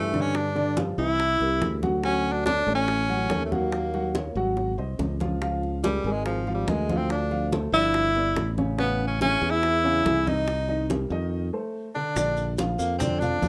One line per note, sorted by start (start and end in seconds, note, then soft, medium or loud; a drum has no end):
0.00 0.92 G2 medium
0.00 0.23 A3 medium
0.00 0.10 E4 medium
0.00 0.10 G#4 medium
0.13 0.48 D3 medium
0.13 0.48 D4 medium
0.13 0.48 D5 medium
0.13 high conga medium
0.21 0.38 C#4 medium
0.35 0.78 D4 loud
0.35 high bongo medium
0.35 high conga soft
0.55 0.73 D3 medium
0.55 0.73 D4 medium
0.55 0.74 D5 medium
0.55 high bongo soft
0.55 high conga soft
0.77 0.94 F3 medium
0.77 0.95 F4 medium
0.77 0.95 G4 medium
0.77 high bongo medium
0.77 high conga medium
0.98 1.37 C2 medium
0.98 1.33 E3 medium
0.98 1.33 E4 medium
0.98 1.79 E4 loud
0.98 1.33 E5 medium
0.98 high conga soft
1.20 high bongo medium
1.20 high conga soft
1.40 1.60 C2 medium
1.40 1.75 G3 medium
1.40 1.75 G4 medium
1.40 1.75 A#4 medium
1.40 high bongo soft
1.40 high conga soft
1.62 2.61 D2 medium
1.62 high bongo medium
1.62 low bongo medium
1.62 high conga medium
1.82 2.00 F#3 medium
1.82 2.00 F#4 medium
1.82 2.00 F#5 medium
1.82 high bongo soft
1.82 high conga medium
2.04 2.39 F#3 medium
2.04 2.34 C#4 medium
2.04 2.39 F#4 medium
2.04 2.39 F#5 medium
2.04 high bongo medium
2.25 high conga soft
2.33 2.45 D4 medium
2.46 2.63 A3 medium
2.46 2.72 D4 loud
2.46 2.64 A4 medium
2.46 2.64 C#5 medium
2.46 high bongo medium
2.46 high conga medium
2.67 3.26 A1 medium
2.67 3.02 A3 medium
2.67 3.02 A4 medium
2.67 3.02 C#5 medium
2.67 high conga soft
2.75 3.41 C#4 medium
2.88 high bongo medium
2.88 high conga soft
3.09 3.27 F#3 medium
3.09 3.27 F#4 medium
3.09 3.27 F#5 medium
3.09 high conga soft
3.30 4.29 D#2 medium
3.30 3.48 A3 medium
3.30 3.48 A4 medium
3.30 3.48 C#5 medium
3.30 high bongo medium
3.30 low bongo medium
3.30 high conga medium
3.46 3.54 A3 soft
3.52 3.86 F#3 medium
3.52 4.15 A#3 medium
3.52 3.86 F#4 medium
3.52 3.86 F#5 medium
3.52 high conga medium
3.72 high bongo medium
3.72 high conga soft
3.94 4.11 F#3 medium
3.94 4.11 F#4 medium
3.94 4.12 F#5 medium
3.94 high bongo soft
3.94 high conga soft
4.15 4.32 A#3 medium
4.15 4.33 A#4 medium
4.15 4.33 C#5 medium
4.15 high bongo medium
4.15 high conga medium
4.35 4.75 G#1 medium
4.35 4.71 F#3 medium
4.35 4.71 F#4 medium
4.35 4.71 F#5 medium
4.35 high conga soft
4.57 high bongo medium
4.57 high conga soft
4.78 4.98 C2 medium
4.78 5.13 C4 medium
4.78 5.13 C5 medium
4.78 5.13 D#5 medium
4.78 high conga soft
4.99 5.98 C#2 medium
4.99 low bongo loud
4.99 high conga medium
5.20 5.38 F3 medium
5.20 5.38 F4 medium
5.20 5.38 F5 medium
5.20 low bongo medium
5.20 high conga medium
5.42 5.76 F3 medium
5.42 5.77 F4 medium
5.42 5.77 F5 medium
5.42 high bongo medium
5.42 high conga soft
5.63 high conga soft
5.84 6.13 G3 medium
5.84 6.01 G#3 medium
5.84 6.01 G#4 medium
5.84 6.02 A#4 medium
5.84 high bongo medium
5.84 high conga medium
6.04 6.64 G#1 medium
6.04 6.39 G#3 medium
6.04 6.40 G#4 medium
6.04 6.40 A#4 medium
6.04 high conga soft
6.12 6.25 G#3 medium
6.26 6.52 F3 medium
6.26 high bongo medium
6.26 high conga soft
6.47 6.64 F3 medium
6.47 6.64 F4 medium
6.47 6.65 F5 medium
6.47 high conga soft
6.54 6.70 G3 medium
6.67 7.67 D2 medium
6.67 6.85 G#3 medium
6.67 6.99 G#3 medium
6.67 6.85 G#4 medium
6.67 6.85 A#4 medium
6.67 high bongo medium
6.67 low bongo medium
6.67 high conga medium
6.89 7.24 F3 medium
6.89 7.24 F4 medium
6.89 7.24 F5 medium
6.89 high conga medium
6.97 7.11 C4 medium
7.10 7.50 D4 medium
7.10 high bongo medium
7.10 high conga soft
7.31 7.49 F3 medium
7.31 7.49 F4 medium
7.31 7.49 F5 medium
7.31 high bongo soft
7.31 high conga soft
7.52 7.70 A3 medium
7.52 7.70 A4 medium
7.52 7.70 C5 medium
7.52 high bongo medium
7.52 high conga medium
7.72 8.32 G1 medium
7.72 8.08 F3 medium
7.72 8.08 D4 medium
7.72 8.54 E4 loud
7.72 8.08 D5 medium
7.72 high conga soft
7.94 high bongo medium
7.94 high conga soft
8.15 8.50 B3 medium
8.15 8.51 B4 medium
8.15 8.51 D5 medium
8.15 high bongo soft
8.15 high conga soft
8.35 9.35 A1 medium
8.35 high bongo medium
8.35 low bongo medium
8.35 high conga medium
8.58 8.75 C#3 medium
8.58 8.75 C#4 medium
8.58 8.75 C#5 medium
8.58 high bongo soft
8.58 high conga medium
8.78 9.13 C#3 medium
8.78 9.05 B3 medium
8.78 9.13 C#4 medium
8.78 9.13 C#5 medium
8.78 high bongo medium
8.78 high conga soft
9.00 high conga soft
9.07 9.20 C#4 medium
9.20 9.38 E3 medium
9.20 9.52 C#4 loud
9.20 9.38 E4 medium
9.20 9.38 G#4 medium
9.20 high bongo medium
9.20 high conga medium
9.41 10.01 E2 medium
9.41 9.76 E3 medium
9.41 9.76 E4 medium
9.41 9.76 G#4 medium
9.41 high conga soft
9.51 10.29 E4 loud
9.63 high bongo medium
9.63 high conga soft
9.84 10.01 C#3 medium
9.84 10.01 C#4 medium
9.84 10.02 C#5 medium
9.84 high conga soft
10.05 11.05 C2 medium
10.05 10.23 E3 medium
10.05 10.23 E4 medium
10.05 10.23 G#4 medium
10.05 high bongo medium
10.05 low bongo medium
10.05 high conga medium
10.26 10.61 D#3 medium
10.26 10.61 D#4 medium
10.26 10.90 D#4 medium
10.26 10.61 D#5 medium
10.26 high conga medium
10.48 high bongo medium
10.48 high conga soft
10.68 10.86 D#3 medium
10.68 10.86 D#4 medium
10.68 10.86 D#5 medium
10.68 high bongo soft
10.68 high conga soft
10.90 11.07 G3 medium
10.90 11.07 G4 medium
10.90 11.07 A#4 medium
10.90 high bongo medium
10.90 high conga medium
11.10 11.50 F2 medium
11.10 11.45 D#3 medium
11.10 11.46 D#4 medium
11.10 11.46 D#5 medium
11.10 high conga soft
11.53 11.88 A3 medium
11.53 11.88 A4 medium
11.53 11.88 C5 medium
11.95 12.13 D3 medium
11.95 12.54 D4 medium
11.95 12.13 D4 medium
11.95 12.13 D5 medium
12.16 12.75 A#1 medium
12.16 12.51 D3 medium
12.16 12.51 D4 medium
12.16 12.52 D5 medium
12.16 high bongo medium
12.16 high conga soft
12.16 maracas medium
12.37 high conga soft
12.37 maracas soft
12.58 12.93 F3 medium
12.58 12.93 F4 medium
12.58 12.94 F5 medium
12.58 high bongo medium
12.58 high conga medium
12.58 maracas soft
12.79 13.38 F2 medium
12.79 12.98 A#3 medium
12.79 high bongo soft
12.79 high conga soft
12.79 maracas medium
12.99 13.18 D3 medium
12.99 13.21 C4 medium
12.99 13.18 D4 medium
12.99 13.18 D5 medium
12.99 high bongo medium
12.99 high conga soft
12.99 low conga medium
12.99 maracas medium
13.20 13.48 F3 medium
13.20 13.48 D4 loud
13.20 13.48 F4 medium
13.20 13.48 F5 medium
13.20 high bongo soft
13.20 high conga soft
13.20 low conga medium
13.20 maracas soft
13.42 13.48 D#2 medium
13.42 high bongo soft
13.42 low bongo medium
13.42 high conga medium
13.42 maracas soft